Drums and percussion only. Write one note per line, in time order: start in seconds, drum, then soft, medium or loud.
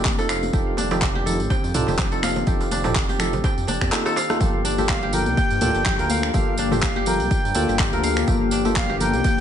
0.05 kick loud
0.05 clap medium
0.05 tambourine medium
0.05 high conga medium
0.19 tambourine soft
0.19 darbuka ka medium
0.29 finger snap medium
0.29 tambourine medium
0.29 darbuka tek medium
0.43 tambourine soft
0.43 muted conga medium
0.53 kick loud
0.53 tambourine soft
0.53 low conga loud
0.77 tambourine medium
0.77 darbuka ka medium
0.77 muted conga medium
0.77 high conga medium
0.91 tambourine soft
0.91 darbuka tek medium
0.91 low conga medium
1.01 kick loud
1.01 clap loud
1.01 tambourine medium
1.15 muted conga soft
1.27 tambourine medium
1.27 low conga medium
1.40 tambourine soft
1.50 kick loud
1.50 tambourine soft
1.50 muted conga medium
1.50 high conga medium
1.50 darbuka tek medium
1.64 tambourine soft
1.74 mid tom loud
1.74 tambourine medium
1.87 tambourine soft
1.87 darbuka ka medium
1.87 muted conga soft
1.87 darbuka dum loud
1.99 kick loud
1.99 clap loud
1.99 tambourine medium
1.99 darbuka tek medium
1.99 low conga loud
2.12 tambourine soft
2.23 finger snap medium
2.23 tambourine medium
2.23 high conga loud
2.23 darbuka tek medium
2.36 tambourine soft
2.36 muted conga medium
2.36 darbuka dum loud
2.47 kick loud
2.47 tambourine soft
2.47 low conga loud
2.61 tambourine soft
2.61 darbuka tek medium
2.71 tambourine medium
2.71 darbuka ka medium
2.71 muted conga medium
2.71 high conga medium
2.84 mid tom medium
2.84 tambourine soft
2.84 darbuka tek medium
2.84 low conga medium
2.95 kick loud
2.95 clap loud
2.95 tambourine soft
3.09 tambourine soft
3.09 muted conga soft
3.19 finger snap medium
3.19 tambourine medium
3.19 low conga loud
3.33 tambourine soft
3.33 darbuka dum loud
3.44 kick loud
3.44 tambourine medium
3.44 muted conga soft
3.44 high conga medium
3.44 darbuka tek medium
3.58 tambourine soft
3.67 tambourine medium
3.67 darbuka ka medium
3.67 high conga medium
3.67 darbuka dum loud
3.81 finger snap medium
3.81 kick medium
3.81 tambourine soft
3.81 darbuka ka medium
3.81 muted conga soft
3.81 high conga medium
3.92 cross-stick medium
3.92 clap loud
3.92 tambourine medium
3.92 high conga medium
4.06 cross-stick medium
4.06 tambourine soft
4.06 darbuka ka medium
4.16 tambourine medium
4.16 darbuka tek medium
4.30 cross-stick medium
4.30 tambourine soft
4.30 muted conga medium
4.30 high conga medium
4.40 kick loud
4.40 tambourine medium
4.40 muted conga medium
4.40 high conga loud
4.40 low conga loud
4.65 tambourine loud
4.78 tambourine soft
4.78 muted conga soft
4.78 high conga medium
4.78 low conga medium
4.89 finger snap loud
4.89 kick loud
4.89 clap loud
4.89 tambourine medium
4.89 high conga medium
5.03 muted conga medium
5.13 tambourine medium
5.13 low conga loud
5.26 tambourine soft
5.26 muted conga soft
5.37 kick loud
5.37 tambourine medium
5.37 high conga medium
5.50 tambourine soft
5.61 mid tom loud
5.61 tambourine medium
5.61 muted conga medium
5.61 high conga medium
5.75 tambourine soft
5.86 finger snap loud
5.86 kick loud
5.86 clap loud
5.86 tambourine soft
5.86 muted conga soft
5.86 low conga loud
5.99 tambourine soft
6.09 tambourine loud
6.09 muted conga medium
6.09 high conga medium
6.23 finger snap medium
6.23 tambourine soft
6.34 kick loud
6.34 tambourine medium
6.34 muted conga medium
6.34 high conga loud
6.34 low conga loud
6.58 tambourine medium
6.71 mid tom medium
6.71 tambourine soft
6.71 muted conga soft
6.71 high conga loud
6.71 low conga loud
6.82 finger snap loud
6.82 kick loud
6.82 clap loud
6.82 tambourine medium
6.82 high conga medium
6.96 muted conga medium
7.06 tambourine medium
7.06 low conga loud
7.20 tambourine soft
7.20 muted conga soft
7.31 kick loud
7.31 tambourine medium
7.45 tambourine soft
7.54 tambourine loud
7.54 muted conga medium
7.54 high conga medium
7.69 tambourine soft
7.79 finger snap loud
7.79 kick loud
7.79 clap loud
7.79 tambourine medium
7.79 muted conga soft
7.93 tambourine soft
8.03 tambourine medium
8.03 muted conga soft
8.16 finger snap medium
8.16 tambourine soft
8.27 kick loud
8.27 tambourine medium
8.27 muted conga medium
8.27 high conga loud
8.27 low conga loud
8.51 tambourine medium
8.65 tambourine soft
8.65 muted conga soft
8.65 high conga loud
8.65 low conga loud
8.76 finger snap loud
8.76 kick loud
8.76 clap loud
8.76 tambourine medium
8.76 high conga medium
8.91 muted conga medium
9.00 tambourine medium
9.00 low conga loud
9.13 tambourine soft
9.13 muted conga soft
9.24 kick loud
9.24 tambourine medium
9.24 high conga loud